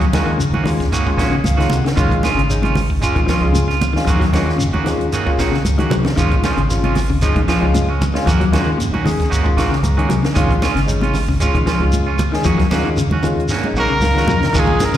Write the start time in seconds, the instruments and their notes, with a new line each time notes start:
0.00 clean electric guitar F#3, kick, closed hi-hat
0.13 fingered electric bass D#2, clean electric guitar D#3 A#3 C#4 F#4, tine electric piano G#3 C#4 F4, snare, closed hi-hat, high conga, low conga, shekere
0.26 clean electric guitar D#3
0.38 clean electric guitar C#3, closed hi-hat, high conga, shekere
0.53 fingered electric bass D#2, clean electric guitar A#3 C#4 F#4, high conga
0.64 clean electric guitar D#3, tine electric piano G#3 C#4 F4, open hi-hat, high conga, low conga, shekere
0.80 kick, snare, closed hi-hat
0.92 clean electric guitar D#3 A#3 C#4 F#4, kick, closed hi-hat, high conga, shekere
1.06 tine electric piano G#3 C#4 F4, kick
1.17 fingered electric bass A#1, clean electric guitar D#3 A#3 C#4 F#4, tine electric piano C#5, snare, closed hi-hat, shekere
1.31 clean electric guitar C#3, muted fingered electric bass stroke
1.44 fingered electric bass C#2, tine electric piano F5, closed hi-hat, high conga, shekere
1.57 clean electric guitar D#3 A#3 C#4 F#4, tine electric piano G#3 C#4 F4, snare, closed hi-hat
1.69 fingered electric bass C3, tine electric piano F#5, closed hi-hat, high conga, low conga, shekere
1.85 clean electric guitar C#3, snare, closed hi-hat
1.96 fingered electric bass A#1, clean electric guitar D#3 G#3 C#4 F4, tine electric piano G#3 C#4 F4, kick, closed hi-hat, high conga, shekere
2.11 kick, closed hi-hat
2.23 clean electric guitar G#3 C#4 F4, snare, closed hi-hat, high conga, shekere
2.35 fingered electric bass G#1, clean electric guitar C#3
2.39 closed hi-hat
2.49 tine electric piano G#3 C#4 D#4, closed hi-hat, high conga, shekere
2.62 clean electric guitar C3 C#4 F4, closed hi-hat, high conga
2.75 open hi-hat, high conga, low conga, shekere
2.90 kick
3.00 tine electric piano G#3 C#4 F4, clean electric guitar G#3 C#4 F4, kick, closed hi-hat, high conga, shekere
3.15 fingered electric bass A#1, clean electric guitar D#3, kick, closed hi-hat
3.26 clean electric guitar F3 G#3 C#4 F4, snare, closed hi-hat, low conga, shekere
3.41 fingered electric bass C#2, tine electric piano G#3 C#4 F4
3.53 clean electric guitar C#3, closed hi-hat, high conga, shekere
3.68 clean electric guitar F4, snare
3.81 closed hi-hat, high conga, low conga, shekere
3.93 clean electric guitar D#3, tine electric piano G#3 C#4 F4, snare
4.05 fingered electric bass D#2, clean electric guitar D#3 F3 A#3 C#4 F#4, kick, closed hi-hat, high conga, shekere
4.20 clean electric guitar F#3, kick, snare, closed hi-hat
4.32 fingered electric bass D#2, clean electric guitar D#3 A#3 C#4 F#4, tine electric piano G#3 C#4 F4, snare, closed hi-hat, high conga, shekere
4.46 muted clean electric guitar stroke, snare
4.58 clean electric guitar C#3, closed hi-hat, high conga, shekere
4.73 fingered electric bass D#2, clean electric guitar A#3 C#4 F#4, high conga
4.84 clean electric guitar D#3, tine electric piano G#3 C#4 F4, snare, closed hi-hat, low conga, shekere
5.01 closed hi-hat
5.12 clean electric guitar D#3 A#3 C#4 F#4, closed hi-hat, high conga, shekere
5.26 tine electric piano G#3 C#4 F4, kick
5.38 fingered electric bass A#1, clean electric guitar D#3 A#3 C#4 F#4, snare, closed hi-hat, shekere
5.52 clean electric guitar C#3, muted fingered electric bass stroke, snare
5.64 fingered electric bass C#2, closed hi-hat, high conga, shekere
5.77 clean electric guitar D#3 A#3 C#4 F#4, tine electric piano G#3 C#4 F#4, closed hi-hat, high conga
5.90 fingered electric bass C3, clean electric guitar F#3, closed hi-hat, low conga, shekere
6.05 clean electric guitar C#3, snare, closed hi-hat, low conga
6.16 fingered electric bass A#1, clean electric guitar D#3 F3 G#3 C#4 F4, tine electric piano G#3 C#4 F4, kick, closed hi-hat, shekere
6.31 kick, closed hi-hat
6.43 clean electric guitar F3 G#3 C#4 F4, snare, closed hi-hat, high conga, low conga, shekere
6.57 fingered electric bass G#1, clean electric guitar C#3, closed hi-hat
6.69 tine electric piano G#3 C#4 F4, snare, closed hi-hat, high conga, shekere
6.83 clean electric guitar C3 G#3 C#4 F4, closed hi-hat, high conga
6.95 open hi-hat, high conga, low conga, shekere
7.10 clean electric guitar C#3, kick
7.21 clean electric guitar F3 G#3 C#4 F4, tine electric piano G#3 C#4 D#4, kick, closed hi-hat, high conga, shekere
7.36 fingered electric bass A#1, clean electric guitar D#3, kick, closed hi-hat, high conga
7.48 clean electric guitar F3 G#3 C#4 F4, snare, closed hi-hat, shekere
7.60 fingered electric bass C#2, tine electric piano G#3 C#4 F4
7.74 clean electric guitar C#3, closed hi-hat, high conga, shekere
7.89 clean electric guitar G#3 C#4, muted clean electric guitar stroke
8.02 closed hi-hat, high conga, low conga, shekere
8.13 tine electric piano G#3 C#4 F4, muted clean electric guitar stroke, snare
8.26 fingered electric bass D#2, clean electric guitar F3 A#3 C#4 F#4, muted clean electric guitar stroke, kick, closed hi-hat, high conga, shekere
8.40 clean electric guitar F#3, kick, closed hi-hat
8.52 fingered electric bass D#2, clean electric guitar D#3 A#3 C#4 F#4, tine electric piano G#3 C#4 F4, snare, closed hi-hat, high conga, low conga, shekere
8.67 clean electric guitar D#3
8.78 clean electric guitar A#2, closed hi-hat, high conga, shekere
8.92 fingered electric bass D#2, clean electric guitar A#3 C#4 F#4, high conga
9.05 clean electric guitar D#3, tine electric piano G#3 C#4 G#4, open hi-hat, high conga, low conga, shekere
9.20 kick, snare, closed hi-hat
9.30 clean electric guitar D#3 A#3 C#4 F#4, kick, closed hi-hat, high conga, shekere
9.43 tine electric piano G#3 C#4 F4, kick
9.57 fingered electric bass A#1, clean electric guitar D#3 A#3 C#4 F#4, snare, closed hi-hat, low conga, shekere
9.70 clean electric guitar C#3, muted fingered electric bass stroke, snare
9.83 fingered electric bass C#2, tine electric piano A#5, closed hi-hat, high conga, shekere
9.97 clean electric guitar D#3 A#3 C#4 F#4, tine electric piano G#3 C#4 G#4, closed hi-hat
10.09 fingered electric bass C3, clean electric guitar F#3, closed hi-hat, high conga, low conga, shekere
10.23 clean electric guitar C#3, snare, closed hi-hat
10.34 fingered electric bass A#1, clean electric guitar D#3 G#3 C#4 F4, tine electric piano G#3 C#4 F4, kick, closed hi-hat, high conga, shekere
10.51 kick, closed hi-hat
10.62 clean electric guitar G#3 C#4 F4, snare, closed hi-hat, high conga, shekere
10.75 fingered electric bass G#1, clean electric guitar C#3, snare, closed hi-hat
10.86 tine electric piano G#3 C#4 D#4, closed hi-hat, high conga, shekere
11.01 clean electric guitar C3 C#4 F4, closed hi-hat, high conga
11.14 open hi-hat, low conga, shekere
11.28 clean electric guitar C#3, kick
11.40 tine electric piano G#3 C#4 F4, clean electric guitar G#3 C#4 F4, kick, closed hi-hat, high conga, shekere
11.54 fingered electric bass A#1, clean electric guitar D#3, kick, closed hi-hat
11.66 clean electric guitar F3 G#3 C#4 F4, snare, closed hi-hat, shekere
11.80 fingered electric bass C#2, tine electric piano G#3 C#4 F4
11.92 closed hi-hat, high conga, shekere
12.07 clean electric guitar C#4 F4
12.19 closed hi-hat, high conga, low conga, shekere
12.32 clean electric guitar D#3, tine electric piano G#3 C#4 G#4, snare
12.44 fingered electric bass D#2, clean electric guitar F3 A#3 C#4 F#4, kick, closed hi-hat, high conga, shekere
12.58 clean electric guitar F#3, kick, snare, closed hi-hat
12.70 fingered electric bass D#2, tine electric piano G#3 C#4 F4, clean electric guitar A#3 C#4 F#4, snare, closed hi-hat, high conga, low conga, shekere
12.85 clean electric guitar D#3
12.97 clean electric guitar C#3, closed hi-hat, high conga, shekere
13.10 fingered electric bass D#2, clean electric guitar C#4 F#4, high conga
13.23 clean electric guitar D#3, tine electric piano G#3 C#4 F4, closed hi-hat, low conga, shekere
13.40 closed hi-hat
13.49 clean electric guitar A#3 C#4 F#4, snare, high conga, shekere
13.64 tine electric piano G#3 C#4 D#4, high conga
13.74 fingered electric bass A#1, clean electric guitar A#3 C#4, tine electric piano F#5, mid tom, shekere
13.78 clean electric guitar F#4, trumpet A#4
13.90 clean electric guitar C#3
14.00 fingered electric bass C#2, tine electric piano F5, snare, high conga, shekere
14.15 clean electric guitar D#3 F#4, tine electric piano G#3 C#4 F4, snare
14.19 clean electric guitar C#4
14.26 fingered electric bass F2, clean electric guitar F#3, tine electric piano D#5, floor tom, high conga, low conga, shekere
14.41 clean electric guitar C#3, snare
14.53 fingered electric bass A#1, clean electric guitar D#3 G#3 C#4, tine electric piano G#3 C#4 F4, muted clean electric guitar stroke, kick, crash, shekere
14.59 trumpet G#4
14.67 high conga
14.80 snare, closed hi-hat, high conga, shekere
14.85 trumpet A#4
14.93 clean electric guitar C#3, shekere